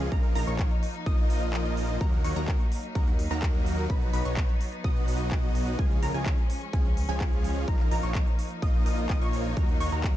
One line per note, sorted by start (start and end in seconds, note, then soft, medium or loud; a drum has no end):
0.00 1.97 F3 medium
0.00 0.10 G#3 medium
0.00 0.10 C#4 medium
0.12 0.33 A#1 loud
0.12 0.33 F3 medium
0.12 3.86 A#3 medium
0.12 0.33 A#3 medium
0.12 1.99 D#4 medium
0.12 0.33 D#4 medium
0.12 0.33 F4 medium
0.12 0.33 A#4 medium
0.12 0.33 A#5 medium
0.12 kick loud
0.12 closed hi-hat medium
0.24 closed hi-hat soft
0.35 0.45 A#1 loud
0.35 0.46 F3 medium
0.35 0.46 A#3 medium
0.35 0.46 D#4 medium
0.35 0.46 F4 medium
0.35 0.46 A#4 loud
0.35 0.46 A#5 loud
0.35 open hi-hat loud
0.47 0.68 A#1 loud
0.47 0.70 F3 medium
0.47 0.70 A#3 medium
0.47 0.70 D#4 medium
0.47 0.70 F4 medium
0.47 0.70 C#5 medium
0.47 0.70 C#6 medium
0.47 closed hi-hat medium
0.59 kick loud
0.59 clap loud
0.59 closed hi-hat medium
0.71 closed hi-hat soft
0.83 open hi-hat medium
0.95 closed hi-hat medium
1.06 1.98 A#1 loud
1.06 1.98 F3 loud
1.06 1.98 A#3 medium
1.06 1.98 D#4 medium
1.06 1.98 F4 medium
1.06 1.98 D#5 loud
1.06 1.98 D#6 loud
1.06 kick loud
1.06 closed hi-hat medium
1.18 closed hi-hat soft
1.30 open hi-hat loud
1.42 closed hi-hat medium
1.53 clap loud
1.53 closed hi-hat medium
1.65 closed hi-hat soft
1.77 open hi-hat medium
1.89 closed hi-hat medium
2.01 2.22 D#2 loud
2.01 5.75 F#3 medium
2.01 2.21 F#3 medium
2.01 2.21 A#3 medium
2.01 2.21 D#4 medium
2.01 5.75 D#4 medium
2.01 2.21 F#4 medium
2.01 2.21 A#4 medium
2.01 2.21 A#5 medium
2.01 kick loud
2.01 closed hi-hat medium
2.13 closed hi-hat soft
2.24 2.34 D#2 loud
2.24 2.33 F#3 medium
2.24 2.33 A#3 medium
2.24 2.33 D#4 medium
2.24 2.33 F#4 medium
2.24 2.33 C#5 medium
2.24 2.33 C#6 medium
2.24 open hi-hat loud
2.36 2.57 D#2 medium
2.36 2.59 F#3 medium
2.36 2.59 A#3 medium
2.36 2.59 D#4 medium
2.36 2.59 F#4 medium
2.36 2.59 A#4 medium
2.36 2.59 A#5 medium
2.36 closed hi-hat medium
2.48 kick loud
2.48 clap loud
2.48 closed hi-hat medium
2.60 closed hi-hat soft
2.72 open hi-hat medium
2.84 closed hi-hat medium
2.95 3.28 D#2 loud
2.95 3.10 F#3 medium
2.95 3.10 A#3 medium
2.95 3.10 D#4 medium
2.95 3.10 F#4 medium
2.95 3.10 A#4 medium
2.95 3.10 A#5 medium
2.95 kick loud
2.95 closed hi-hat medium
3.07 closed hi-hat soft
3.19 open hi-hat loud
3.31 3.88 D#2 loud
3.31 3.87 F#3 medium
3.31 3.87 A#3 medium
3.31 3.87 D#4 medium
3.31 3.87 F#4 medium
3.31 3.87 A#4 loud
3.31 3.87 A#5 loud
3.31 closed hi-hat medium
3.43 kick loud
3.43 clap loud
3.43 closed hi-hat medium
3.54 closed hi-hat soft
3.66 open hi-hat medium
3.78 closed hi-hat medium
3.90 4.11 B1 loud
3.90 4.11 F#3 medium
3.90 4.11 B3 medium
3.90 5.77 B3 medium
3.90 4.11 D#4 medium
3.90 4.11 F#4 medium
3.90 4.11 B4 medium
3.90 4.11 B5 medium
3.90 kick loud
3.90 closed hi-hat medium
4.02 closed hi-hat soft
4.13 4.23 B1 loud
4.13 4.24 F#3 medium
4.13 4.23 B3 medium
4.13 4.24 D#4 medium
4.13 4.24 F#4 medium
4.13 4.24 B4 loud
4.13 4.24 B5 loud
4.13 open hi-hat loud
4.25 4.46 B1 loud
4.25 4.48 F#3 medium
4.25 4.48 B3 medium
4.25 4.48 D#4 medium
4.25 4.48 F#4 medium
4.25 4.48 C#5 medium
4.25 4.48 C#6 medium
4.25 closed hi-hat medium
4.37 kick loud
4.37 clap loud
4.37 closed hi-hat medium
4.49 closed hi-hat soft
4.61 open hi-hat loud
4.73 closed hi-hat medium
4.84 5.76 B1 loud
4.84 5.76 F#3 loud
4.84 5.76 B3 medium
4.84 5.76 D#4 medium
4.84 5.76 F#4 medium
4.84 5.76 D#5 loud
4.84 5.76 D#6 loud
4.84 kick loud
4.84 closed hi-hat medium
4.96 closed hi-hat soft
5.08 open hi-hat loud
5.20 closed hi-hat medium
5.31 kick loud
5.31 clap loud
5.31 closed hi-hat medium
5.43 closed hi-hat soft
5.55 open hi-hat loud
5.67 closed hi-hat medium
5.79 6.00 C#2 loud
5.79 9.53 F3 medium
5.79 5.99 F3 medium
5.79 7.66 G#3 medium
5.79 5.99 G#3 medium
5.79 7.66 C#4 medium
5.79 5.99 C#4 medium
5.79 5.99 F4 medium
5.79 5.99 G#4 medium
5.79 5.99 G#5 medium
5.79 kick loud
5.79 closed hi-hat medium
5.91 closed hi-hat soft
6.02 6.12 C#2 loud
6.02 6.11 F3 medium
6.02 6.11 G#3 medium
6.02 6.11 C#4 medium
6.02 6.11 F4 medium
6.02 6.11 A#4 medium
6.02 6.12 A#5 medium
6.02 open hi-hat loud
6.14 6.35 C#2 medium
6.14 6.37 F3 medium
6.14 6.37 G#3 medium
6.14 6.37 C#4 medium
6.14 6.37 F4 medium
6.14 6.37 G#4 medium
6.14 6.37 G#5 medium
6.14 closed hi-hat medium
6.26 kick loud
6.26 clap loud
6.26 closed hi-hat medium
6.38 closed hi-hat soft
6.50 open hi-hat loud
6.62 closed hi-hat medium
6.73 7.06 C#2 medium
6.73 6.88 F3 medium
6.73 6.88 G#3 medium
6.73 6.88 C#4 medium
6.73 6.88 F4 medium
6.73 6.88 G#4 medium
6.73 6.88 G#5 medium
6.73 kick loud
6.73 closed hi-hat soft
6.85 closed hi-hat soft
6.97 open hi-hat loud
7.09 7.65 C#2 loud
7.09 7.65 F3 loud
7.09 7.65 G#3 medium
7.09 7.65 C#4 medium
7.09 7.65 F4 medium
7.09 7.65 G#4 loud
7.09 7.65 G#5 loud
7.09 closed hi-hat soft
7.21 kick loud
7.21 clap loud
7.21 closed hi-hat soft
7.33 closed hi-hat soft
7.44 open hi-hat medium
7.56 closed hi-hat medium
7.68 7.89 A#1 loud
7.68 7.89 F3 medium
7.68 7.89 A#3 medium
7.68 10.17 A#3 medium
7.68 7.89 D#4 medium
7.68 10.17 D#4 medium
7.68 7.89 F4 medium
7.68 7.89 A#4 medium
7.68 7.89 A#5 medium
7.68 kick loud
7.68 closed hi-hat medium
7.80 clap soft
7.80 closed hi-hat soft
7.91 8.01 A#1 loud
7.91 8.02 F3 medium
7.91 8.02 A#3 medium
7.91 8.02 D#4 medium
7.91 8.02 F4 medium
7.91 8.02 A#4 loud
7.91 8.02 A#5 loud
7.91 open hi-hat loud
8.03 8.24 A#1 loud
8.03 8.26 F3 medium
8.03 8.26 A#3 medium
8.03 8.26 D#4 medium
8.03 8.26 F4 medium
8.03 8.26 C#5 medium
8.03 8.26 C#6 medium
8.03 closed hi-hat medium
8.15 kick loud
8.15 clap loud
8.15 closed hi-hat medium
8.27 closed hi-hat soft
8.39 open hi-hat loud
8.51 closed hi-hat soft
8.62 8.84 A#1 loud
8.62 8.84 F3 loud
8.62 8.84 A#3 medium
8.62 8.84 D#4 medium
8.62 8.84 F4 medium
8.62 8.84 D#5 loud
8.62 8.84 D#6 loud
8.62 kick loud
8.62 closed hi-hat soft
8.74 closed hi-hat soft
8.86 9.07 A#1 medium
8.86 9.07 F3 medium
8.86 9.07 A#3 medium
8.86 9.07 D#4 medium
8.86 9.07 F4 medium
8.86 9.07 D#5 medium
8.86 9.07 D#6 medium
8.86 open hi-hat loud
8.98 closed hi-hat medium
9.10 9.19 A#1 medium
9.10 9.19 F3 loud
9.10 9.19 A#3 medium
9.10 9.19 D#4 medium
9.10 9.19 F4 medium
9.10 9.19 D#5 loud
9.10 9.19 D#6 loud
9.10 kick loud
9.10 clap loud
9.10 closed hi-hat medium
9.21 9.55 A#1 loud
9.21 9.54 F3 medium
9.21 9.54 A#3 medium
9.21 9.54 D#4 medium
9.21 9.54 F4 medium
9.21 9.54 C#5 medium
9.21 9.54 C#6 loud
9.21 closed hi-hat soft
9.33 open hi-hat medium
9.45 closed hi-hat medium
9.57 9.78 D#2 loud
9.57 10.17 F#3 medium
9.57 9.77 F#3 medium
9.57 9.77 A#3 medium
9.57 9.77 D#4 medium
9.57 9.77 F#4 medium
9.57 9.77 A#4 medium
9.57 9.77 A#5 medium
9.57 kick loud
9.57 closed hi-hat medium
9.69 closed hi-hat soft
9.80 9.90 D#2 loud
9.80 9.89 F#3 medium
9.80 9.89 A#3 medium
9.80 9.89 D#4 medium
9.80 9.89 F#4 medium
9.80 9.89 C#5 medium
9.80 9.89 C#6 medium
9.80 open hi-hat loud
9.92 10.13 D#2 loud
9.92 10.15 F#3 medium
9.92 10.15 A#3 medium
9.92 10.15 D#4 medium
9.92 10.15 F#4 medium
9.92 10.15 A#4 medium
9.92 10.15 A#5 medium
9.92 closed hi-hat medium
10.04 kick loud
10.04 clap loud
10.04 closed hi-hat medium